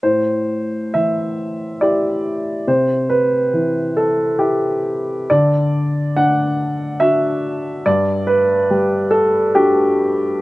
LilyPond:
\new Staff \with { instrumentName = "Upright piano" } { \time 3/4 \key a \dorian \tempo 4 = 70 << { c''4 e''4 d''4 | c''8 b'4 a'8 g'4 | d''4 fis''4 e''4 | d''8 b'4 a'8 g'4 | } \\ { a,4 e4 <e' g'>4 | c4 e4 e'4 | d4 d'4 <d' fis'>4 | g,4 g4 <d' fis'>4 | } >> }